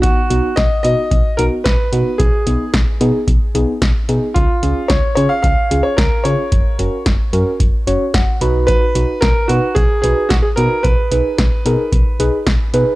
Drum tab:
HH |xxxxxxxx|xxxxxxxx|xxxxxxxx|xxxxxxxx|
SD |--o---o-|--o---o-|--o---o-|--o---o-|
BD |o-o-o-o-|o-o-o-o-|o-o-o-o-|o-o-o-o-|

HH |xxxxxxxx|xxxxxxxx|
SD |--o---o-|--o---o-|
BD |o-o-o-o-|o-o-o-o-|